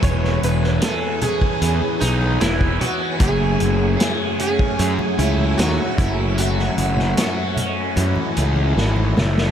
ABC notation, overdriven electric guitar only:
X:1
M:4/4
L:1/8
Q:1/4=76
K:F#dor
V:1 name="Overdriven electric guitar"
E,,2 G C E, B, E, B, | F,,2 G C F, A, F, F,, | F,,2 F C E, A, E, A, |]